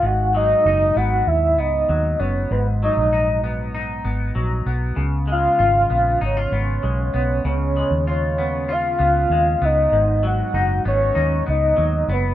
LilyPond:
<<
  \new Staff \with { instrumentName = "Soft synth lead" } { \time 4/4 \key gis \minor \tempo 4 = 97 fis''8 dis''4 fis''8 e''8 dis''4 cis''8 | b'8 dis''4 r2 r8 | r8 eis''4. cis''2 | cis''4 cis''4 eis''4. dis''8~ |
dis''8 fis''4 cis''4 dis''4 b'8 | }
  \new Staff \with { instrumentName = "Clean electric guitar" } { \time 4/4 \key gis \minor gis,8 fis8 dis'8 b4 b8 fis8 b8 | gis,8 fis8 dis'8 b8 dis'8 b8 fis8 b8 | cis8 gis8 eis'8 b8 dis'16 eis'16 b8 gis8 b8 | cis8 gis8 eis'8 b8 eis'8 b8 gis8 b8 |
gis,8 fis8 dis'8 b8 dis'8 b8 fis8 b8 | }
  \new Staff \with { instrumentName = "Fingered electric bass" } { \clef bass \time 4/4 \key gis \minor gis,,4 fis,,8 gis,,8 dis,8 cis,8 dis,8 fis,,8 | gis,,8. ais,,4.~ ais,,16 gis,,8 ais,,8 b,,8 | cis,4 gis,,8 ais,,8 gis,,8 gis,,8 b,,8 b,,8 | cis,8. dis,4.~ dis,16 cis,8 dis,8 cis,8 |
gis,,4 fis,,8 gis,,8 dis,8 cis,8 dis,8 fis,,8 | }
>>